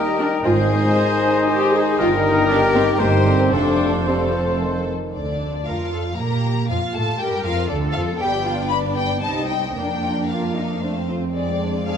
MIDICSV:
0, 0, Header, 1, 12, 480
1, 0, Start_track
1, 0, Key_signature, -2, "major"
1, 0, Tempo, 511509
1, 413, Time_signature, 3, 2, 24, 8
1, 2807, Tempo, 536193
1, 5207, Tempo, 505902
1, 8087, Tempo, 524934
1, 11073, End_track
2, 0, Start_track
2, 0, Title_t, "Flute"
2, 0, Program_c, 0, 73
2, 0, Note_on_c, 0, 79, 66
2, 422, Note_on_c, 0, 80, 75
2, 436, Note_off_c, 0, 79, 0
2, 1850, Note_off_c, 0, 80, 0
2, 1856, Note_on_c, 0, 79, 87
2, 2788, Note_off_c, 0, 79, 0
2, 2812, Note_on_c, 0, 79, 72
2, 3274, Note_off_c, 0, 79, 0
2, 3294, Note_on_c, 0, 77, 54
2, 3764, Note_off_c, 0, 77, 0
2, 3768, Note_on_c, 0, 77, 49
2, 4484, Note_off_c, 0, 77, 0
2, 11073, End_track
3, 0, Start_track
3, 0, Title_t, "Violin section"
3, 0, Program_c, 1, 48
3, 899, Note_on_c, 1, 72, 54
3, 975, Note_off_c, 1, 72, 0
3, 1382, Note_on_c, 1, 72, 60
3, 1457, Note_off_c, 1, 72, 0
3, 1873, Note_on_c, 1, 70, 80
3, 2778, Note_off_c, 1, 70, 0
3, 2801, Note_on_c, 1, 72, 66
3, 3270, Note_on_c, 1, 69, 55
3, 3279, Note_off_c, 1, 72, 0
3, 3762, Note_off_c, 1, 69, 0
3, 3773, Note_on_c, 1, 69, 51
3, 4541, Note_off_c, 1, 69, 0
3, 4720, Note_on_c, 1, 74, 55
3, 5163, Note_off_c, 1, 74, 0
3, 5188, Note_on_c, 1, 77, 53
3, 5673, Note_on_c, 1, 82, 62
3, 5684, Note_off_c, 1, 77, 0
3, 6167, Note_on_c, 1, 77, 62
3, 6168, Note_off_c, 1, 82, 0
3, 6404, Note_on_c, 1, 81, 73
3, 6409, Note_off_c, 1, 77, 0
3, 6651, Note_off_c, 1, 81, 0
3, 6663, Note_on_c, 1, 79, 67
3, 6898, Note_off_c, 1, 79, 0
3, 6900, Note_on_c, 1, 77, 73
3, 7117, Note_on_c, 1, 74, 63
3, 7129, Note_off_c, 1, 77, 0
3, 7193, Note_off_c, 1, 74, 0
3, 7344, Note_on_c, 1, 77, 70
3, 7420, Note_off_c, 1, 77, 0
3, 7591, Note_on_c, 1, 79, 83
3, 8068, Note_off_c, 1, 79, 0
3, 8077, Note_on_c, 1, 83, 75
3, 8151, Note_off_c, 1, 83, 0
3, 8319, Note_on_c, 1, 79, 83
3, 8551, Note_on_c, 1, 81, 71
3, 8553, Note_off_c, 1, 79, 0
3, 8788, Note_off_c, 1, 81, 0
3, 8795, Note_on_c, 1, 79, 63
3, 9023, Note_off_c, 1, 79, 0
3, 9034, Note_on_c, 1, 79, 71
3, 9516, Note_off_c, 1, 79, 0
3, 9534, Note_on_c, 1, 77, 51
3, 10257, Note_off_c, 1, 77, 0
3, 10485, Note_on_c, 1, 74, 61
3, 10931, Note_off_c, 1, 74, 0
3, 10977, Note_on_c, 1, 77, 65
3, 11073, Note_off_c, 1, 77, 0
3, 11073, End_track
4, 0, Start_track
4, 0, Title_t, "Oboe"
4, 0, Program_c, 2, 68
4, 0, Note_on_c, 2, 75, 58
4, 391, Note_off_c, 2, 75, 0
4, 397, Note_on_c, 2, 75, 65
4, 1819, Note_off_c, 2, 75, 0
4, 1856, Note_on_c, 2, 75, 67
4, 2320, Note_on_c, 2, 74, 72
4, 2334, Note_off_c, 2, 75, 0
4, 2808, Note_on_c, 2, 72, 58
4, 2821, Note_off_c, 2, 74, 0
4, 3275, Note_off_c, 2, 72, 0
4, 3280, Note_on_c, 2, 72, 56
4, 3757, Note_off_c, 2, 72, 0
4, 3763, Note_on_c, 2, 72, 58
4, 4482, Note_off_c, 2, 72, 0
4, 11073, End_track
5, 0, Start_track
5, 0, Title_t, "Trumpet section"
5, 0, Program_c, 3, 61
5, 0, Note_on_c, 3, 70, 68
5, 402, Note_off_c, 3, 70, 0
5, 417, Note_on_c, 3, 72, 71
5, 1829, Note_off_c, 3, 72, 0
5, 1860, Note_on_c, 3, 70, 77
5, 2790, Note_off_c, 3, 70, 0
5, 2814, Note_on_c, 3, 72, 73
5, 3282, Note_off_c, 3, 72, 0
5, 3292, Note_on_c, 3, 72, 51
5, 3763, Note_off_c, 3, 72, 0
5, 3777, Note_on_c, 3, 72, 48
5, 4488, Note_off_c, 3, 72, 0
5, 11073, End_track
6, 0, Start_track
6, 0, Title_t, "Clarinet"
6, 0, Program_c, 4, 71
6, 0, Note_on_c, 4, 70, 60
6, 413, Note_on_c, 4, 72, 73
6, 427, Note_off_c, 4, 70, 0
6, 1856, Note_off_c, 4, 72, 0
6, 1863, Note_on_c, 4, 70, 79
6, 2791, Note_off_c, 4, 70, 0
6, 2809, Note_on_c, 4, 67, 66
6, 3273, Note_off_c, 4, 67, 0
6, 3286, Note_on_c, 4, 69, 56
6, 3760, Note_off_c, 4, 69, 0
6, 3777, Note_on_c, 4, 69, 56
6, 4488, Note_off_c, 4, 69, 0
6, 11073, End_track
7, 0, Start_track
7, 0, Title_t, "Cello section"
7, 0, Program_c, 5, 48
7, 413, Note_on_c, 5, 44, 79
7, 817, Note_off_c, 5, 44, 0
7, 1872, Note_on_c, 5, 43, 75
7, 2777, Note_off_c, 5, 43, 0
7, 2817, Note_on_c, 5, 43, 73
7, 3277, Note_off_c, 5, 43, 0
7, 3286, Note_on_c, 5, 41, 63
7, 4556, Note_off_c, 5, 41, 0
7, 5207, Note_on_c, 5, 70, 45
7, 5434, Note_off_c, 5, 70, 0
7, 5455, Note_on_c, 5, 69, 45
7, 5531, Note_off_c, 5, 69, 0
7, 5692, Note_on_c, 5, 67, 43
7, 6167, Note_off_c, 5, 67, 0
7, 6181, Note_on_c, 5, 65, 52
7, 6651, Note_off_c, 5, 65, 0
7, 6656, Note_on_c, 5, 70, 52
7, 7121, Note_off_c, 5, 70, 0
7, 7131, Note_on_c, 5, 69, 63
7, 7598, Note_off_c, 5, 69, 0
7, 7611, Note_on_c, 5, 67, 63
7, 7844, Note_on_c, 5, 65, 57
7, 7849, Note_off_c, 5, 67, 0
7, 8085, Note_off_c, 5, 65, 0
7, 8086, Note_on_c, 5, 62, 58
7, 8550, Note_off_c, 5, 62, 0
7, 8554, Note_on_c, 5, 63, 52
7, 9025, Note_off_c, 5, 63, 0
7, 9045, Note_on_c, 5, 62, 48
7, 9473, Note_off_c, 5, 62, 0
7, 9535, Note_on_c, 5, 65, 46
7, 9759, Note_off_c, 5, 65, 0
7, 9776, Note_on_c, 5, 63, 48
7, 10015, Note_off_c, 5, 63, 0
7, 10016, Note_on_c, 5, 62, 45
7, 10089, Note_off_c, 5, 62, 0
7, 10259, Note_on_c, 5, 60, 42
7, 10332, Note_off_c, 5, 60, 0
7, 10982, Note_on_c, 5, 68, 53
7, 11073, Note_off_c, 5, 68, 0
7, 11073, End_track
8, 0, Start_track
8, 0, Title_t, "Violin section"
8, 0, Program_c, 6, 48
8, 0, Note_on_c, 6, 67, 73
8, 375, Note_off_c, 6, 67, 0
8, 422, Note_on_c, 6, 68, 83
8, 1383, Note_off_c, 6, 68, 0
8, 1384, Note_on_c, 6, 63, 86
8, 2312, Note_off_c, 6, 63, 0
8, 2332, Note_on_c, 6, 67, 87
8, 2799, Note_off_c, 6, 67, 0
8, 2809, Note_on_c, 6, 70, 77
8, 3282, Note_off_c, 6, 70, 0
8, 3293, Note_on_c, 6, 69, 59
8, 4480, Note_off_c, 6, 69, 0
8, 4741, Note_on_c, 6, 62, 47
8, 5175, Note_off_c, 6, 62, 0
8, 5203, Note_on_c, 6, 65, 51
8, 5677, Note_on_c, 6, 70, 57
8, 5692, Note_off_c, 6, 65, 0
8, 6160, Note_off_c, 6, 70, 0
8, 6188, Note_on_c, 6, 65, 54
8, 6264, Note_off_c, 6, 65, 0
8, 6427, Note_on_c, 6, 69, 58
8, 6658, Note_off_c, 6, 69, 0
8, 6662, Note_on_c, 6, 67, 62
8, 6892, Note_off_c, 6, 67, 0
8, 6894, Note_on_c, 6, 65, 66
8, 7131, Note_off_c, 6, 65, 0
8, 7139, Note_on_c, 6, 62, 63
8, 7214, Note_off_c, 6, 62, 0
8, 7367, Note_on_c, 6, 65, 65
8, 7603, Note_off_c, 6, 65, 0
8, 7617, Note_on_c, 6, 55, 58
8, 7625, Note_on_c, 6, 74, 54
8, 7724, Note_off_c, 6, 55, 0
8, 7739, Note_on_c, 6, 59, 56
8, 7853, Note_off_c, 6, 59, 0
8, 7871, Note_on_c, 6, 62, 53
8, 7979, Note_off_c, 6, 62, 0
8, 8000, Note_on_c, 6, 65, 51
8, 8103, Note_off_c, 6, 65, 0
8, 8106, Note_on_c, 6, 62, 56
8, 8213, Note_off_c, 6, 62, 0
8, 8219, Note_on_c, 6, 59, 51
8, 8327, Note_on_c, 6, 55, 52
8, 8330, Note_off_c, 6, 59, 0
8, 8443, Note_off_c, 6, 55, 0
8, 8450, Note_on_c, 6, 59, 48
8, 8531, Note_off_c, 6, 74, 0
8, 8564, Note_off_c, 6, 59, 0
8, 8569, Note_on_c, 6, 55, 50
8, 8571, Note_on_c, 6, 75, 53
8, 8675, Note_off_c, 6, 55, 0
8, 8692, Note_on_c, 6, 60, 44
8, 8804, Note_off_c, 6, 60, 0
8, 8806, Note_on_c, 6, 63, 41
8, 8921, Note_off_c, 6, 63, 0
8, 8926, Note_on_c, 6, 60, 45
8, 9043, Note_off_c, 6, 60, 0
8, 9043, Note_off_c, 6, 75, 0
8, 9048, Note_on_c, 6, 70, 43
8, 9051, Note_on_c, 6, 58, 43
8, 9159, Note_off_c, 6, 58, 0
8, 9169, Note_on_c, 6, 62, 46
8, 9287, Note_off_c, 6, 62, 0
8, 9293, Note_on_c, 6, 65, 41
8, 9410, Note_off_c, 6, 65, 0
8, 9428, Note_on_c, 6, 62, 38
8, 9539, Note_off_c, 6, 62, 0
8, 9566, Note_on_c, 6, 58, 40
8, 9669, Note_off_c, 6, 58, 0
8, 9677, Note_on_c, 6, 62, 33
8, 9785, Note_off_c, 6, 62, 0
8, 9810, Note_on_c, 6, 65, 38
8, 9912, Note_off_c, 6, 65, 0
8, 9921, Note_on_c, 6, 62, 33
8, 10019, Note_off_c, 6, 70, 0
8, 10026, Note_on_c, 6, 72, 40
8, 10027, Note_off_c, 6, 62, 0
8, 10030, Note_on_c, 6, 57, 39
8, 10134, Note_off_c, 6, 57, 0
8, 10165, Note_on_c, 6, 60, 30
8, 10270, Note_off_c, 6, 60, 0
8, 10276, Note_on_c, 6, 65, 38
8, 10314, Note_off_c, 6, 72, 0
8, 10385, Note_off_c, 6, 65, 0
8, 10394, Note_on_c, 6, 60, 38
8, 10504, Note_off_c, 6, 60, 0
8, 10505, Note_on_c, 6, 56, 44
8, 10514, Note_on_c, 6, 74, 52
8, 10611, Note_off_c, 6, 56, 0
8, 10627, Note_on_c, 6, 60, 50
8, 10740, Note_off_c, 6, 60, 0
8, 10756, Note_on_c, 6, 62, 43
8, 10863, Note_off_c, 6, 62, 0
8, 10877, Note_on_c, 6, 65, 41
8, 10982, Note_off_c, 6, 65, 0
8, 10992, Note_on_c, 6, 62, 49
8, 11073, Note_off_c, 6, 62, 0
8, 11073, Note_off_c, 6, 74, 0
8, 11073, End_track
9, 0, Start_track
9, 0, Title_t, "Viola section"
9, 0, Program_c, 7, 48
9, 182, Note_on_c, 7, 62, 81
9, 257, Note_off_c, 7, 62, 0
9, 424, Note_on_c, 7, 65, 91
9, 499, Note_off_c, 7, 65, 0
9, 671, Note_on_c, 7, 63, 84
9, 1371, Note_off_c, 7, 63, 0
9, 1383, Note_on_c, 7, 67, 115
9, 1620, Note_off_c, 7, 67, 0
9, 1636, Note_on_c, 7, 68, 95
9, 1865, Note_off_c, 7, 68, 0
9, 1869, Note_on_c, 7, 65, 114
9, 1944, Note_off_c, 7, 65, 0
9, 2108, Note_on_c, 7, 63, 80
9, 2331, Note_off_c, 7, 63, 0
9, 2332, Note_on_c, 7, 62, 98
9, 2407, Note_off_c, 7, 62, 0
9, 2577, Note_on_c, 7, 60, 93
9, 2652, Note_off_c, 7, 60, 0
9, 2813, Note_on_c, 7, 58, 82
9, 2884, Note_off_c, 7, 58, 0
9, 3051, Note_on_c, 7, 60, 76
9, 3282, Note_off_c, 7, 60, 0
9, 3283, Note_on_c, 7, 62, 84
9, 3768, Note_off_c, 7, 62, 0
9, 3772, Note_on_c, 7, 60, 62
9, 4500, Note_off_c, 7, 60, 0
9, 4739, Note_on_c, 7, 50, 48
9, 5173, Note_off_c, 7, 50, 0
9, 5208, Note_on_c, 7, 53, 48
9, 5686, Note_on_c, 7, 58, 58
9, 5694, Note_off_c, 7, 53, 0
9, 6164, Note_off_c, 7, 58, 0
9, 6186, Note_on_c, 7, 53, 53
9, 6262, Note_off_c, 7, 53, 0
9, 6415, Note_on_c, 7, 57, 55
9, 6491, Note_off_c, 7, 57, 0
9, 6664, Note_on_c, 7, 55, 64
9, 6893, Note_off_c, 7, 55, 0
9, 6895, Note_on_c, 7, 53, 61
9, 7132, Note_off_c, 7, 53, 0
9, 7132, Note_on_c, 7, 50, 64
9, 7357, Note_on_c, 7, 53, 62
9, 7365, Note_off_c, 7, 50, 0
9, 7589, Note_on_c, 7, 59, 53
9, 7592, Note_on_c, 7, 62, 60
9, 7602, Note_off_c, 7, 53, 0
9, 8514, Note_off_c, 7, 59, 0
9, 8515, Note_off_c, 7, 62, 0
9, 8551, Note_on_c, 7, 60, 51
9, 8553, Note_on_c, 7, 55, 56
9, 9033, Note_off_c, 7, 60, 0
9, 9034, Note_off_c, 7, 55, 0
9, 9035, Note_on_c, 7, 58, 45
9, 9036, Note_on_c, 7, 62, 42
9, 9993, Note_off_c, 7, 58, 0
9, 9993, Note_off_c, 7, 62, 0
9, 10008, Note_on_c, 7, 57, 39
9, 10011, Note_on_c, 7, 60, 44
9, 10306, Note_off_c, 7, 57, 0
9, 10487, Note_on_c, 7, 56, 48
9, 11073, Note_off_c, 7, 56, 0
9, 11073, Note_off_c, 7, 60, 0
9, 11073, End_track
10, 0, Start_track
10, 0, Title_t, "French horn section"
10, 0, Program_c, 8, 60
10, 0, Note_on_c, 8, 55, 66
10, 0, Note_on_c, 8, 63, 61
10, 401, Note_off_c, 8, 63, 0
10, 407, Note_off_c, 8, 55, 0
10, 412, Note_on_c, 8, 63, 65
10, 423, Note_on_c, 8, 56, 68
10, 1827, Note_off_c, 8, 63, 0
10, 1858, Note_on_c, 8, 55, 68
10, 1860, Note_on_c, 8, 63, 76
10, 1861, Note_off_c, 8, 56, 0
10, 2789, Note_off_c, 8, 55, 0
10, 2790, Note_off_c, 8, 63, 0
10, 2806, Note_on_c, 8, 55, 66
10, 2808, Note_on_c, 8, 63, 68
10, 3271, Note_off_c, 8, 55, 0
10, 3272, Note_off_c, 8, 63, 0
10, 3281, Note_on_c, 8, 57, 55
10, 3289, Note_on_c, 8, 60, 54
10, 3746, Note_off_c, 8, 60, 0
10, 3750, Note_off_c, 8, 57, 0
10, 3757, Note_on_c, 8, 60, 52
10, 3761, Note_on_c, 8, 57, 51
10, 4478, Note_off_c, 8, 60, 0
10, 4480, Note_off_c, 8, 57, 0
10, 11073, End_track
11, 0, Start_track
11, 0, Title_t, "Bassoon"
11, 0, Program_c, 10, 70
11, 0, Note_on_c, 10, 51, 57
11, 404, Note_off_c, 10, 51, 0
11, 413, Note_on_c, 10, 51, 63
11, 1827, Note_off_c, 10, 51, 0
11, 1870, Note_on_c, 10, 51, 76
11, 2795, Note_off_c, 10, 51, 0
11, 2817, Note_on_c, 10, 51, 58
11, 2920, Note_off_c, 10, 51, 0
11, 3046, Note_on_c, 10, 50, 57
11, 3279, Note_off_c, 10, 50, 0
11, 3285, Note_on_c, 10, 48, 55
11, 3759, Note_off_c, 10, 48, 0
11, 3778, Note_on_c, 10, 55, 62
11, 4016, Note_on_c, 10, 53, 52
11, 4030, Note_off_c, 10, 55, 0
11, 4260, Note_on_c, 10, 51, 52
11, 4273, Note_off_c, 10, 53, 0
11, 4743, Note_off_c, 10, 51, 0
11, 11073, End_track
12, 0, Start_track
12, 0, Title_t, "Double bass section"
12, 0, Program_c, 11, 48
12, 410, Note_on_c, 11, 32, 69
12, 816, Note_off_c, 11, 32, 0
12, 1865, Note_on_c, 11, 31, 78
12, 2774, Note_off_c, 11, 31, 0
12, 2812, Note_on_c, 11, 31, 67
12, 3275, Note_off_c, 11, 31, 0
12, 3284, Note_on_c, 11, 29, 54
12, 4555, Note_off_c, 11, 29, 0
12, 4737, Note_on_c, 11, 38, 43
12, 5173, Note_off_c, 11, 38, 0
12, 5203, Note_on_c, 11, 41, 46
12, 5692, Note_off_c, 11, 41, 0
12, 5694, Note_on_c, 11, 46, 53
12, 6171, Note_on_c, 11, 41, 53
12, 6178, Note_off_c, 11, 46, 0
12, 6247, Note_off_c, 11, 41, 0
12, 6415, Note_on_c, 11, 45, 58
12, 6652, Note_off_c, 11, 45, 0
12, 6653, Note_on_c, 11, 43, 55
12, 6888, Note_off_c, 11, 43, 0
12, 6901, Note_on_c, 11, 41, 66
12, 7130, Note_off_c, 11, 41, 0
12, 7140, Note_on_c, 11, 38, 63
12, 7369, Note_off_c, 11, 38, 0
12, 7372, Note_on_c, 11, 41, 59
12, 7448, Note_off_c, 11, 41, 0
12, 7610, Note_on_c, 11, 31, 59
12, 8524, Note_off_c, 11, 31, 0
12, 8548, Note_on_c, 11, 36, 55
12, 9022, Note_off_c, 11, 36, 0
12, 9032, Note_on_c, 11, 41, 45
12, 11073, Note_off_c, 11, 41, 0
12, 11073, End_track
0, 0, End_of_file